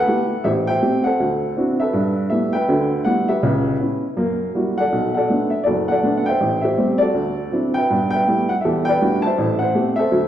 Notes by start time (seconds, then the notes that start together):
Already playing: A4 B4 E5 F#5
0.08 A3 B3 E4 G4
0.44 A1 G4 C5 E5
0.67 C5 E5 G5
0.82 A3 C4 G4
1.04 A4 C5 F#5
1.20 D2
1.57 C4 D4 E4 F#4
1.80 A4 B4 E5
1.93 G2
2.30 G3 A3 B3 E4 E5
2.53 B4 E5 G5
2.69 D2 D3
3.05 G3 A3 B3 E4 F#5
3.29 G4 B4 E5
3.43 C#2 C#3
3.79 B3 C#4 E4
4.17 F#2 A#3
4.55 G3 A#3 E4 F#4
4.78 A4 D5 F#5
4.92 B1
5.14 A4 D5 F#5
5.30 A3 B3 D4
5.50 E5
5.64 F#1 F#4 A4 D5
5.88 A4 D5 F#5
6.03 A3 B3 D4
6.17 F#5
6.26 C5 E5 G5
6.40 A1
6.62 G4 C5 E5
6.78 G3 A3 C4
6.98 F#4 A4 D5
7.14 D2
7.52 F#3 C4 D4 E4
7.74 B4 E5 G5
7.90 G2 B3
8.11 B4 G5
8.15 E5
8.28 G3 A3 B3 E4
8.49 F#5
8.61 E2 G4 E5
8.65 A4
8.85 B4 D5 G5
9.01 G3 A3 D4 E4 F#4
9.22 A5
9.26 C5 E5
9.38 A1 A2
9.59 C5 F#5
9.75 A3 C4 G4
9.96 A4 C5 E5
10.11 D2 F#3